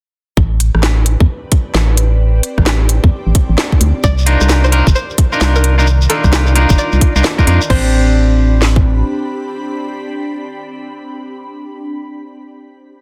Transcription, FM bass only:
0.37 0.71 A1 medium
0.75 1.16 A1 medium
1.20 1.27 E2 medium
1.75 2.41 A1 medium
2.58 3.00 A1 medium
3.04 3.11 E2 medium
3.27 3.33 A1 medium
3.49 3.56 A1 medium
3.81 3.93 D2 loud
4.04 4.37 C2 loud
4.41 4.83 C2 medium
4.87 4.94 G1 medium
5.41 6.07 C2 medium
6.24 6.66 C2 medium
6.70 6.77 G1 medium
6.93 7.00 C2 medium
7.16 7.23 C2 loud
7.47 7.59 F2 loud
7.70 9.03 A1 medium

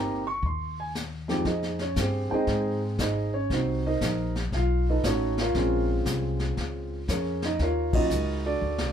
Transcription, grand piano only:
0.00 0.22 A#3 medium
0.00 0.22 C4 medium
0.00 0.22 D#4 medium
0.00 0.23 G4 medium
0.00 0.26 A#5 medium
0.27 0.43 C#6 loud
0.46 0.77 C6 medium
0.80 0.89 G#5 medium
1.28 1.44 F2 medium
1.28 1.44 G#3 medium
1.28 1.44 C4 medium
1.28 1.44 D#4 medium
1.28 1.44 G4 medium
1.47 1.79 D#4 medium
1.47 1.79 G#4 medium
1.47 1.79 C5 medium
1.47 1.79 D#5 medium
1.81 1.97 C#4 medium
1.81 1.97 C#5 medium
1.99 2.29 C4 medium
1.99 2.31 G4 medium
1.99 2.31 G#4 medium
1.99 2.31 C5 medium
2.30 2.95 G#3 medium
2.30 2.95 C4 medium
2.30 2.33 D#4 medium
2.30 2.80 G#4 medium
2.30 2.80 C5 medium
2.30 2.80 D#5 medium
2.30 2.96 G5 medium
2.34 2.80 D#4 medium
3.00 3.33 D#4 medium
3.00 3.33 G#4 medium
3.00 3.33 C5 medium
3.00 3.33 D#5 medium
3.34 3.50 C#4 medium
3.34 3.50 C#5 medium
3.53 3.85 C4 medium
3.53 3.85 D#4 medium
3.53 3.85 F#4 medium
3.53 3.85 C5 medium
3.86 4.33 D#4 medium
3.86 4.33 A#4 medium
3.86 4.33 C5 medium
3.86 4.33 D#5 medium
4.54 4.87 F4 medium
4.54 4.86 F5 medium
4.89 5.04 D#4 medium
4.89 5.04 A4 medium
4.89 5.05 B4 medium
4.89 5.05 D#5 medium
5.04 5.35 A3 medium
5.04 5.35 C#4 medium
5.04 5.35 D#4 medium
5.04 5.35 F#4 medium
5.04 5.38 A4 medium
5.04 5.37 C#5 medium
5.40 5.56 F4 medium
5.40 5.87 A#4 medium
5.40 5.87 C#5 medium
5.40 5.87 F5 medium
5.56 6.99 G#3 medium
5.56 6.99 C4 medium
5.56 6.99 C#4 medium
5.56 6.99 F4 medium
7.10 7.42 C#4 medium
7.10 7.42 G#4 medium
7.10 7.42 A#4 medium
7.10 7.42 C#5 medium
7.45 7.61 D#4 medium
7.45 7.60 D#5 medium
7.62 7.93 F4 medium
7.62 7.93 A#4 medium
7.62 7.94 C#5 medium
7.62 7.94 F5 medium
7.94 8.09 F#3 medium
7.94 8.10 A#3 medium
7.94 8.10 C#4 medium
7.94 8.42 D#4 medium
7.94 8.10 F4 medium
7.94 8.42 F#4 medium
7.94 8.42 A#4 medium
7.94 8.42 D#5 medium
8.46 8.92 D4 medium
8.46 8.92 F#4 medium
8.46 8.92 A4 medium
8.46 8.92 D5 medium

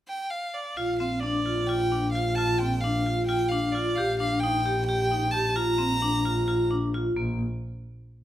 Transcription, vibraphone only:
0.77 0.92 F4 medium
1.00 1.15 C4 medium
1.23 1.38 D4 medium
1.46 1.61 F4 medium
1.69 1.84 F4 medium
1.92 2.07 D4 medium
2.15 2.30 F4 medium
2.38 2.53 F4 medium
2.60 2.75 C4 medium
2.84 2.99 D4 medium
3.06 3.21 F4 medium
3.29 3.44 F4 medium
3.51 3.67 D4 medium
3.75 3.90 F4 medium
3.98 4.13 G4 medium
4.20 4.35 D4 medium
4.43 4.58 D#4 medium
4.66 4.81 G4 medium
4.89 5.04 G4 medium
5.11 5.27 D#4 medium
5.34 5.49 G4 medium
5.56 5.71 F4 medium
5.78 5.94 C4 medium
6.02 6.18 D4 medium
6.25 6.41 F4 medium
6.48 6.63 F4 medium
6.71 6.86 D4 medium
6.94 7.10 F4 medium
7.16 7.38 A#3 medium

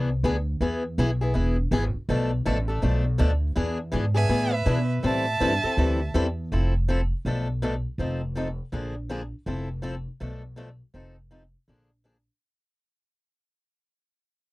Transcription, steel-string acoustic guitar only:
0.24 0.35 E3 medium
0.24 0.35 B3 medium
0.24 0.35 D4 medium
0.24 0.36 G#4 loud
0.61 0.82 E3 medium
0.61 0.82 B3 medium
0.61 0.82 E4 medium
0.61 0.83 G#4 medium
0.98 1.09 E3 medium
0.98 1.09 B3 medium
0.98 1.10 E4 loud
0.98 1.10 G#4 loud
1.21 1.33 B3 soft
1.21 1.34 E4 medium
1.21 1.34 G#4 medium
1.34 1.55 E3 medium
1.34 1.56 B3 medium
1.34 1.56 E4 medium
1.34 1.56 G#4 medium
1.72 1.83 E3 medium
1.72 1.83 B3 medium
1.72 1.83 E4 medium
1.72 1.83 G#4 loud
2.09 2.30 B2 medium
2.09 2.30 F3 medium
2.09 2.30 A3 medium
2.09 2.30 D4 medium
2.09 2.30 A4 medium
2.46 2.57 B2 medium
2.46 2.57 F3 medium
2.46 2.57 A3 medium
2.46 2.57 D4 medium
2.46 2.57 A4 medium
2.68 2.81 A3 soft
2.68 2.82 D4 medium
2.68 2.82 A4 medium
2.82 3.03 B2 medium
2.82 3.03 F3 medium
2.82 3.04 A3 medium
2.82 3.04 D4 medium
2.82 3.04 A4 medium
3.18 3.30 B2 medium
3.18 3.30 F3 medium
3.18 3.30 A3 medium
3.18 3.30 D4 loud
3.18 3.31 A4 medium
3.56 3.77 E3 medium
3.56 3.77 B3 medium
3.56 3.77 D4 medium
3.56 3.77 G#4 medium
3.92 4.04 E3 medium
3.92 4.04 B3 medium
3.92 4.04 D4 medium
3.92 4.04 G#4 medium
4.14 4.28 B3 soft
4.14 4.28 D4 soft
4.14 4.29 G#4 medium
4.29 4.50 E3 medium
4.29 4.51 B3 medium
4.29 4.51 D4 medium
4.29 4.51 G#4 medium
4.66 4.78 E3 medium
4.66 4.78 B3 loud
4.66 4.78 D4 medium
4.66 4.78 G#4 medium
5.03 5.24 E3 medium
5.03 5.25 G3 medium
5.03 5.25 C4 medium
5.03 5.25 E4 medium
5.03 5.25 A4 medium
5.40 5.52 E3 medium
5.40 5.52 G3 medium
5.40 5.52 C4 medium
5.40 5.52 E4 medium
5.40 5.52 A4 medium
5.64 5.77 C4 soft
5.64 5.78 E4 soft
5.64 5.77 A4 medium
5.78 5.99 E3 medium
5.78 5.99 G3 medium
5.78 5.99 C4 medium
5.78 5.99 E4 medium
5.78 5.99 A4 medium
6.14 6.25 E3 medium
6.14 6.26 G3 medium
6.14 6.26 C4 medium
6.14 6.26 E4 medium
6.14 6.26 A4 loud
6.52 6.73 F3 medium
6.52 6.73 C4 medium
6.52 6.73 E4 medium
6.52 6.73 A4 medium
6.88 6.99 F3 medium
6.88 7.00 C4 medium
6.88 7.00 E4 medium
6.88 7.00 A4 medium
7.26 7.46 B2 medium
7.26 7.47 F3 medium
7.26 7.47 A3 medium
7.26 7.47 D4 medium
7.26 7.47 A4 medium
7.62 7.73 B2 medium
7.62 7.74 F3 medium
7.62 7.74 A3 medium
7.62 7.74 D4 medium
7.62 7.74 A4 medium
7.99 8.20 F3 medium
7.99 8.20 C4 medium
7.99 8.21 D#4 medium
7.99 8.21 A4 medium
8.35 8.47 F3 medium
8.35 8.47 C4 medium
8.35 8.47 D#4 medium
8.35 8.48 A4 medium
8.72 8.93 D3 medium
8.72 8.94 F3 medium
8.72 8.94 A#3 medium
8.72 8.94 D4 medium
8.72 8.94 G#4 medium
9.09 9.21 D3 medium
9.09 9.21 F3 medium
9.09 9.21 A#3 medium
9.09 9.21 D4 medium
9.09 9.21 G#4 medium
9.46 9.67 F3 medium
9.46 9.68 C4 medium
9.46 9.68 E4 medium
9.46 9.68 A4 medium
9.82 9.94 F3 medium
9.82 9.94 C4 medium
9.82 9.94 E4 medium
9.82 9.95 A4 loud
10.20 10.41 B2 medium
10.20 10.41 F3 medium
10.20 10.41 A3 medium
10.20 10.42 D4 medium
10.20 10.42 A4 medium
10.56 10.68 B2 medium
10.56 10.68 F3 medium
10.56 10.68 A3 medium
10.56 10.68 D4 medium
10.56 10.68 A4 medium
10.94 11.15 F3 medium
10.94 11.15 C4 medium
10.94 11.15 D#4 medium
10.94 11.16 A4 medium
11.31 11.42 F3 medium
11.31 11.42 C4 medium
11.31 11.42 D#4 medium
11.31 11.42 A4 medium
11.68 11.89 D3 medium
11.68 11.89 F3 medium
11.68 11.89 A#3 medium
11.68 11.89 D4 medium
11.68 11.89 G#4 medium
12.04 12.15 D3 medium
12.04 12.16 F3 medium
12.04 12.16 A#3 medium
12.04 12.16 D4 medium
12.04 12.16 G#4 medium

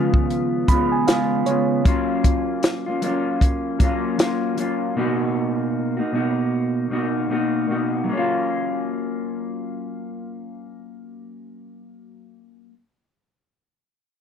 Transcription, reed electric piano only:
0.00 1.86 D#3 medium
0.00 1.83 F3 medium
0.00 1.81 B3 medium
0.00 1.82 C#4 medium
0.00 1.82 B4 medium
0.68 0.90 B5 medium
0.92 1.06 G#5 medium
1.07 1.44 F5 medium
1.46 1.82 C#5 medium

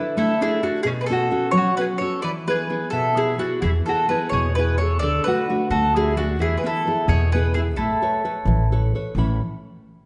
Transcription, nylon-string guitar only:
0.00 0.32 D4 soft
0.00 0.32 E4 soft
0.00 0.33 A4 soft
0.17 0.62 A3 medium
0.41 0.61 D4 soft
0.41 0.62 E4 soft
0.41 0.62 A4 medium
0.63 0.81 D4 soft
0.63 0.81 E4 soft
0.63 0.81 A4 soft
0.85 1.31 B2 medium
1.10 1.30 B3 soft
1.10 1.31 C#4 soft
1.10 1.30 F#4 medium
1.31 1.69 B3 soft
1.31 1.70 C#4 soft
1.31 1.70 F#4 medium
1.52 1.99 F#3 medium
1.78 2.00 B3 soft
1.78 2.00 C#4 soft
1.78 2.01 F#4 medium
2.01 2.19 B3 soft
2.01 2.19 C#4 soft
2.01 2.19 F#4 soft
2.24 2.69 E3 soft
2.47 2.69 B3 soft
2.47 2.69 E4 soft
2.47 2.69 G#4 medium
2.70 3.08 B3 soft
2.70 3.08 E4 soft
2.70 3.08 G#4 medium
2.92 3.39 B2 medium
3.16 3.37 B3 soft
3.16 3.38 E4 soft
3.16 3.38 G#4 soft
3.38 3.77 B3 soft
3.38 3.78 E4 soft
3.38 3.78 G#4 soft
3.62 4.09 E3 soft
3.87 4.08 B3 soft
3.87 4.09 E4 soft
3.87 4.09 G#4 medium
4.09 4.47 B3 soft
4.09 4.48 E4 soft
4.09 4.48 G#4 soft
4.33 4.79 B2 medium
4.58 4.79 B3 soft
4.58 4.79 E4 soft
4.58 4.80 G#4 medium
4.80 4.98 B3 soft
4.80 4.98 E4 soft
4.80 4.99 G#4 soft
5.03 5.48 D3 medium
5.27 5.48 A3 soft
5.27 5.49 D4 soft
5.27 5.49 F#4 medium
5.50 5.71 A3 soft
5.50 5.87 D4 soft
5.50 5.87 F#4 soft
5.72 5.95 A3 medium
5.96 6.15 A3 soft
5.96 6.16 D4 soft
5.96 6.16 F#4 soft
6.17 6.35 A3 soft
6.17 6.35 D4 soft
6.17 6.35 F#4 soft
6.39 6.85 E3 medium
6.63 6.86 B3 soft
6.63 6.86 E4 soft
6.63 7.00 B4 medium
6.87 7.24 B3 soft
6.87 7.24 E4 soft
6.87 7.25 G#4 soft
7.10 7.54 B2 medium
7.34 7.55 B3 soft
7.34 7.55 E4 soft
7.34 7.56 G#4 medium
7.57 7.74 B3 soft
7.57 7.74 E4 soft
7.57 7.74 G#4 soft
7.78 8.23 A3 medium
8.02 8.24 A4 soft
8.02 8.23 B4 soft
8.02 8.24 C#5 medium
8.25 8.63 A4 soft
8.25 8.63 B4 soft
8.25 8.63 C#5 soft
8.47 8.93 E3 medium
8.72 8.94 A4 soft
8.72 8.94 B4 soft
8.72 8.94 C#5 medium
8.95 9.12 A4 soft
8.95 9.13 B4 soft
8.95 9.13 C#5 soft
9.16 9.40 A2 soft
9.16 9.40 E3 soft
9.16 9.40 C#4 soft
9.16 9.40 A4 soft
9.16 9.41 E5 soft
9.16 9.41 B5 soft

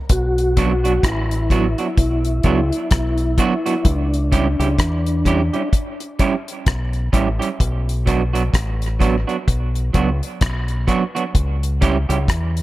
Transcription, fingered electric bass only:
0.10 1.00 B1 medium
1.03 1.74 A1 medium
1.98 2.41 B1 medium
2.44 2.70 C#2 medium
2.92 3.35 B1 medium
3.85 4.55 C#2 loud
4.59 4.77 C#2 medium
4.79 5.49 E2 medium
6.67 7.10 B1 medium
7.13 7.39 A1 medium
7.60 8.50 B1 loud
8.54 9.24 A1 medium
9.48 9.91 B1 medium
9.95 10.20 C#2 medium
10.42 10.85 B1 medium
11.35 12.05 C#2 medium
12.09 12.27 C#2 medium
12.29 12.62 E2 medium

